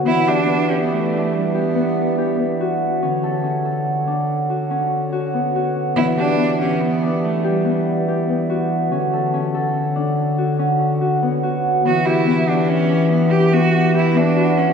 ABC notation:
X:1
M:7/4
L:1/16
Q:1/4=143
K:Edor
V:1 name="Pipe organ"
[Ede]24- [Ede]4 | [D,cf]24- [D,cf]4 | [Ede]24- [Ede]4 | [D,cf]24- [D,cf]4 |
[Ee]24- [Ee]4 |]
V:2 name="Harp"
B,2 G2 B,2 G4 D4 G2 B,4 G2 B,2 F4 | C2 A2 C2 A4 D4 F2 C4 F2 B,2 F4 | B,2 G2 B,2 G4 D4 G2 B,4 G2 B,2 F4 | C2 A2 C2 A4 D4 F2 C4 F2 B,2 F4 |
B,2 G2 B,2 G4 D4 G2 B,4 G2 B,2 F4 |]
V:3 name="Cello"
E2 D4 C B, A,4 G,2 B,8 z6 | z24 z4 | E2 D4 C2 B,4 A,2 G,4 z8 z2 | z24 z4 |
F2 E4 D2 C4 B,2 G2 F4 E2 D4 C2 |]
V:4 name="Bass clarinet" clef=bass
E,24- E,4 | D,24- D,4 | E,24- E,4 | D,24- D,4 |
E,24- E,4 |]